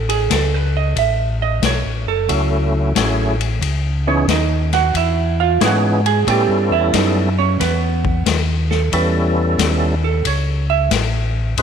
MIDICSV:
0, 0, Header, 1, 5, 480
1, 0, Start_track
1, 0, Tempo, 662983
1, 698, Time_signature, 4, 2, 24, 8
1, 8414, End_track
2, 0, Start_track
2, 0, Title_t, "Hollow-body jazz guitar"
2, 0, Program_c, 0, 26
2, 65, Note_on_c, 0, 68, 89
2, 215, Note_off_c, 0, 68, 0
2, 231, Note_on_c, 0, 69, 86
2, 394, Note_off_c, 0, 69, 0
2, 394, Note_on_c, 0, 71, 84
2, 541, Note_off_c, 0, 71, 0
2, 555, Note_on_c, 0, 75, 83
2, 702, Note_off_c, 0, 75, 0
2, 714, Note_on_c, 0, 76, 89
2, 1020, Note_off_c, 0, 76, 0
2, 1030, Note_on_c, 0, 75, 88
2, 1177, Note_off_c, 0, 75, 0
2, 1200, Note_on_c, 0, 73, 88
2, 1503, Note_off_c, 0, 73, 0
2, 1508, Note_on_c, 0, 69, 93
2, 1955, Note_off_c, 0, 69, 0
2, 2952, Note_on_c, 0, 61, 71
2, 2953, Note_on_c, 0, 73, 80
2, 3097, Note_off_c, 0, 73, 0
2, 3098, Note_off_c, 0, 61, 0
2, 3113, Note_on_c, 0, 63, 66
2, 3117, Note_on_c, 0, 75, 76
2, 3420, Note_off_c, 0, 63, 0
2, 3420, Note_off_c, 0, 75, 0
2, 3429, Note_on_c, 0, 78, 108
2, 3435, Note_on_c, 0, 66, 84
2, 3576, Note_off_c, 0, 78, 0
2, 3579, Note_off_c, 0, 66, 0
2, 3596, Note_on_c, 0, 76, 72
2, 3602, Note_on_c, 0, 64, 51
2, 3901, Note_off_c, 0, 76, 0
2, 3903, Note_off_c, 0, 64, 0
2, 3910, Note_on_c, 0, 77, 100
2, 3914, Note_on_c, 0, 65, 75
2, 4056, Note_off_c, 0, 77, 0
2, 4058, Note_off_c, 0, 65, 0
2, 4088, Note_on_c, 0, 66, 68
2, 4091, Note_on_c, 0, 78, 76
2, 4386, Note_off_c, 0, 78, 0
2, 4387, Note_off_c, 0, 66, 0
2, 4388, Note_on_c, 0, 80, 103
2, 4398, Note_on_c, 0, 68, 86
2, 4536, Note_off_c, 0, 80, 0
2, 4540, Note_off_c, 0, 68, 0
2, 4559, Note_on_c, 0, 79, 74
2, 4566, Note_on_c, 0, 67, 61
2, 4862, Note_off_c, 0, 79, 0
2, 4866, Note_off_c, 0, 67, 0
2, 4867, Note_on_c, 0, 76, 91
2, 4873, Note_on_c, 0, 64, 68
2, 5015, Note_off_c, 0, 76, 0
2, 5018, Note_off_c, 0, 64, 0
2, 5031, Note_on_c, 0, 63, 59
2, 5033, Note_on_c, 0, 75, 73
2, 5337, Note_off_c, 0, 75, 0
2, 5339, Note_off_c, 0, 63, 0
2, 5347, Note_on_c, 0, 73, 90
2, 5350, Note_on_c, 0, 61, 71
2, 5495, Note_off_c, 0, 73, 0
2, 5497, Note_off_c, 0, 61, 0
2, 5504, Note_on_c, 0, 71, 79
2, 5510, Note_on_c, 0, 59, 54
2, 5952, Note_off_c, 0, 71, 0
2, 5953, Note_off_c, 0, 59, 0
2, 6304, Note_on_c, 0, 69, 79
2, 6454, Note_off_c, 0, 69, 0
2, 6473, Note_on_c, 0, 71, 90
2, 7240, Note_off_c, 0, 71, 0
2, 7271, Note_on_c, 0, 69, 88
2, 7418, Note_off_c, 0, 69, 0
2, 7436, Note_on_c, 0, 73, 78
2, 7741, Note_off_c, 0, 73, 0
2, 7746, Note_on_c, 0, 76, 116
2, 7895, Note_off_c, 0, 76, 0
2, 8414, End_track
3, 0, Start_track
3, 0, Title_t, "Tonewheel organ"
3, 0, Program_c, 1, 16
3, 1657, Note_on_c, 1, 54, 54
3, 1658, Note_on_c, 1, 61, 51
3, 1659, Note_on_c, 1, 57, 51
3, 1661, Note_on_c, 1, 64, 52
3, 2121, Note_off_c, 1, 54, 0
3, 2122, Note_off_c, 1, 57, 0
3, 2122, Note_off_c, 1, 61, 0
3, 2123, Note_off_c, 1, 64, 0
3, 2145, Note_on_c, 1, 54, 60
3, 2146, Note_on_c, 1, 57, 52
3, 2146, Note_on_c, 1, 68, 64
3, 2147, Note_on_c, 1, 61, 55
3, 2148, Note_on_c, 1, 64, 58
3, 2432, Note_off_c, 1, 54, 0
3, 2433, Note_off_c, 1, 57, 0
3, 2433, Note_off_c, 1, 61, 0
3, 2433, Note_off_c, 1, 68, 0
3, 2434, Note_off_c, 1, 64, 0
3, 2948, Note_on_c, 1, 52, 68
3, 2950, Note_on_c, 1, 59, 65
3, 2951, Note_on_c, 1, 63, 66
3, 2952, Note_on_c, 1, 61, 69
3, 2954, Note_on_c, 1, 68, 77
3, 3085, Note_off_c, 1, 52, 0
3, 3086, Note_off_c, 1, 59, 0
3, 3086, Note_off_c, 1, 63, 0
3, 3087, Note_off_c, 1, 61, 0
3, 3088, Note_off_c, 1, 68, 0
3, 4061, Note_on_c, 1, 52, 64
3, 4062, Note_on_c, 1, 59, 61
3, 4063, Note_on_c, 1, 68, 73
3, 4066, Note_on_c, 1, 61, 61
3, 4066, Note_on_c, 1, 63, 63
3, 4350, Note_off_c, 1, 52, 0
3, 4351, Note_off_c, 1, 59, 0
3, 4351, Note_off_c, 1, 68, 0
3, 4353, Note_off_c, 1, 61, 0
3, 4353, Note_off_c, 1, 63, 0
3, 4542, Note_on_c, 1, 59, 52
3, 4543, Note_on_c, 1, 61, 54
3, 4545, Note_on_c, 1, 55, 57
3, 4546, Note_on_c, 1, 64, 48
3, 4548, Note_on_c, 1, 69, 61
3, 5278, Note_off_c, 1, 59, 0
3, 5279, Note_off_c, 1, 61, 0
3, 5280, Note_off_c, 1, 55, 0
3, 5280, Note_off_c, 1, 64, 0
3, 5281, Note_off_c, 1, 69, 0
3, 6466, Note_on_c, 1, 59, 62
3, 6468, Note_on_c, 1, 55, 66
3, 6468, Note_on_c, 1, 61, 62
3, 6468, Note_on_c, 1, 64, 58
3, 6469, Note_on_c, 1, 69, 72
3, 7201, Note_off_c, 1, 59, 0
3, 7202, Note_off_c, 1, 55, 0
3, 7202, Note_off_c, 1, 61, 0
3, 7202, Note_off_c, 1, 64, 0
3, 7202, Note_off_c, 1, 69, 0
3, 8387, Note_on_c, 1, 56, 58
3, 8387, Note_on_c, 1, 63, 59
3, 8388, Note_on_c, 1, 60, 58
3, 8414, Note_off_c, 1, 56, 0
3, 8414, Note_off_c, 1, 60, 0
3, 8414, Note_off_c, 1, 63, 0
3, 8414, End_track
4, 0, Start_track
4, 0, Title_t, "Tonewheel organ"
4, 0, Program_c, 2, 16
4, 0, Note_on_c, 2, 33, 89
4, 204, Note_off_c, 2, 33, 0
4, 220, Note_on_c, 2, 37, 98
4, 685, Note_off_c, 2, 37, 0
4, 696, Note_on_c, 2, 33, 91
4, 1162, Note_off_c, 2, 33, 0
4, 1174, Note_on_c, 2, 35, 93
4, 1331, Note_off_c, 2, 35, 0
4, 1339, Note_on_c, 2, 33, 56
4, 1498, Note_off_c, 2, 33, 0
4, 1502, Note_on_c, 2, 30, 65
4, 1648, Note_off_c, 2, 30, 0
4, 1656, Note_on_c, 2, 37, 91
4, 2122, Note_off_c, 2, 37, 0
4, 2139, Note_on_c, 2, 33, 97
4, 2603, Note_off_c, 2, 33, 0
4, 2617, Note_on_c, 2, 37, 86
4, 3082, Note_off_c, 2, 37, 0
4, 3094, Note_on_c, 2, 39, 90
4, 3560, Note_off_c, 2, 39, 0
4, 3578, Note_on_c, 2, 40, 86
4, 4042, Note_off_c, 2, 40, 0
4, 4059, Note_on_c, 2, 44, 97
4, 4523, Note_off_c, 2, 44, 0
4, 4541, Note_on_c, 2, 45, 92
4, 4694, Note_off_c, 2, 45, 0
4, 4695, Note_on_c, 2, 43, 50
4, 4850, Note_on_c, 2, 40, 61
4, 4855, Note_off_c, 2, 43, 0
4, 5002, Note_off_c, 2, 40, 0
4, 5022, Note_on_c, 2, 42, 89
4, 5485, Note_off_c, 2, 42, 0
4, 5500, Note_on_c, 2, 40, 79
4, 5964, Note_off_c, 2, 40, 0
4, 5980, Note_on_c, 2, 39, 94
4, 6444, Note_off_c, 2, 39, 0
4, 6458, Note_on_c, 2, 40, 81
4, 6923, Note_off_c, 2, 40, 0
4, 6937, Note_on_c, 2, 39, 92
4, 7403, Note_off_c, 2, 39, 0
4, 7422, Note_on_c, 2, 37, 82
4, 7886, Note_off_c, 2, 37, 0
4, 7895, Note_on_c, 2, 33, 100
4, 8363, Note_off_c, 2, 33, 0
4, 8381, Note_on_c, 2, 32, 89
4, 8414, Note_off_c, 2, 32, 0
4, 8414, End_track
5, 0, Start_track
5, 0, Title_t, "Drums"
5, 68, Note_on_c, 9, 51, 52
5, 140, Note_off_c, 9, 51, 0
5, 218, Note_on_c, 9, 36, 22
5, 220, Note_on_c, 9, 38, 64
5, 221, Note_on_c, 9, 44, 53
5, 221, Note_on_c, 9, 51, 74
5, 291, Note_off_c, 9, 36, 0
5, 292, Note_off_c, 9, 38, 0
5, 293, Note_off_c, 9, 44, 0
5, 293, Note_off_c, 9, 51, 0
5, 697, Note_on_c, 9, 36, 26
5, 698, Note_on_c, 9, 51, 56
5, 769, Note_off_c, 9, 36, 0
5, 770, Note_off_c, 9, 51, 0
5, 1176, Note_on_c, 9, 38, 73
5, 1177, Note_on_c, 9, 36, 21
5, 1177, Note_on_c, 9, 44, 51
5, 1177, Note_on_c, 9, 51, 66
5, 1249, Note_off_c, 9, 36, 0
5, 1249, Note_off_c, 9, 38, 0
5, 1249, Note_off_c, 9, 44, 0
5, 1249, Note_off_c, 9, 51, 0
5, 1658, Note_on_c, 9, 36, 18
5, 1659, Note_on_c, 9, 51, 54
5, 1730, Note_off_c, 9, 36, 0
5, 1731, Note_off_c, 9, 51, 0
5, 2139, Note_on_c, 9, 36, 20
5, 2141, Note_on_c, 9, 38, 68
5, 2142, Note_on_c, 9, 44, 56
5, 2142, Note_on_c, 9, 51, 69
5, 2211, Note_off_c, 9, 36, 0
5, 2214, Note_off_c, 9, 38, 0
5, 2215, Note_off_c, 9, 44, 0
5, 2215, Note_off_c, 9, 51, 0
5, 2466, Note_on_c, 9, 51, 49
5, 2538, Note_off_c, 9, 51, 0
5, 2619, Note_on_c, 9, 36, 23
5, 2623, Note_on_c, 9, 51, 59
5, 2692, Note_off_c, 9, 36, 0
5, 2695, Note_off_c, 9, 51, 0
5, 3099, Note_on_c, 9, 36, 19
5, 3101, Note_on_c, 9, 38, 66
5, 3102, Note_on_c, 9, 44, 56
5, 3102, Note_on_c, 9, 51, 58
5, 3171, Note_off_c, 9, 36, 0
5, 3174, Note_off_c, 9, 38, 0
5, 3175, Note_off_c, 9, 44, 0
5, 3175, Note_off_c, 9, 51, 0
5, 3421, Note_on_c, 9, 38, 32
5, 3422, Note_on_c, 9, 51, 46
5, 3493, Note_off_c, 9, 38, 0
5, 3494, Note_off_c, 9, 51, 0
5, 3579, Note_on_c, 9, 36, 21
5, 3582, Note_on_c, 9, 51, 57
5, 3651, Note_off_c, 9, 36, 0
5, 3654, Note_off_c, 9, 51, 0
5, 4059, Note_on_c, 9, 36, 18
5, 4062, Note_on_c, 9, 38, 72
5, 4062, Note_on_c, 9, 44, 58
5, 4062, Note_on_c, 9, 51, 64
5, 4132, Note_off_c, 9, 36, 0
5, 4134, Note_off_c, 9, 38, 0
5, 4135, Note_off_c, 9, 44, 0
5, 4135, Note_off_c, 9, 51, 0
5, 4385, Note_on_c, 9, 51, 47
5, 4458, Note_off_c, 9, 51, 0
5, 4540, Note_on_c, 9, 36, 23
5, 4543, Note_on_c, 9, 51, 59
5, 4612, Note_off_c, 9, 36, 0
5, 4616, Note_off_c, 9, 51, 0
5, 5020, Note_on_c, 9, 36, 23
5, 5020, Note_on_c, 9, 38, 62
5, 5021, Note_on_c, 9, 44, 50
5, 5021, Note_on_c, 9, 51, 66
5, 5093, Note_off_c, 9, 36, 0
5, 5093, Note_off_c, 9, 38, 0
5, 5093, Note_off_c, 9, 44, 0
5, 5093, Note_off_c, 9, 51, 0
5, 5501, Note_on_c, 9, 36, 20
5, 5506, Note_on_c, 9, 38, 36
5, 5506, Note_on_c, 9, 51, 56
5, 5573, Note_off_c, 9, 36, 0
5, 5578, Note_off_c, 9, 38, 0
5, 5579, Note_off_c, 9, 51, 0
5, 5826, Note_on_c, 9, 36, 61
5, 5898, Note_off_c, 9, 36, 0
5, 5981, Note_on_c, 9, 36, 25
5, 5981, Note_on_c, 9, 38, 74
5, 5982, Note_on_c, 9, 44, 49
5, 5982, Note_on_c, 9, 51, 73
5, 6053, Note_off_c, 9, 36, 0
5, 6054, Note_off_c, 9, 38, 0
5, 6054, Note_off_c, 9, 44, 0
5, 6054, Note_off_c, 9, 51, 0
5, 6305, Note_on_c, 9, 38, 39
5, 6378, Note_off_c, 9, 38, 0
5, 6460, Note_on_c, 9, 36, 23
5, 6462, Note_on_c, 9, 51, 61
5, 6533, Note_off_c, 9, 36, 0
5, 6535, Note_off_c, 9, 51, 0
5, 6941, Note_on_c, 9, 36, 25
5, 6944, Note_on_c, 9, 38, 68
5, 6944, Note_on_c, 9, 44, 62
5, 6944, Note_on_c, 9, 51, 71
5, 7013, Note_off_c, 9, 36, 0
5, 7016, Note_off_c, 9, 38, 0
5, 7017, Note_off_c, 9, 44, 0
5, 7017, Note_off_c, 9, 51, 0
5, 7419, Note_on_c, 9, 36, 21
5, 7421, Note_on_c, 9, 51, 60
5, 7492, Note_off_c, 9, 36, 0
5, 7493, Note_off_c, 9, 51, 0
5, 7898, Note_on_c, 9, 38, 65
5, 7899, Note_on_c, 9, 44, 56
5, 7899, Note_on_c, 9, 51, 72
5, 7900, Note_on_c, 9, 36, 24
5, 7971, Note_off_c, 9, 38, 0
5, 7971, Note_off_c, 9, 44, 0
5, 7971, Note_off_c, 9, 51, 0
5, 7972, Note_off_c, 9, 36, 0
5, 8379, Note_on_c, 9, 36, 19
5, 8380, Note_on_c, 9, 51, 58
5, 8414, Note_off_c, 9, 36, 0
5, 8414, Note_off_c, 9, 51, 0
5, 8414, End_track
0, 0, End_of_file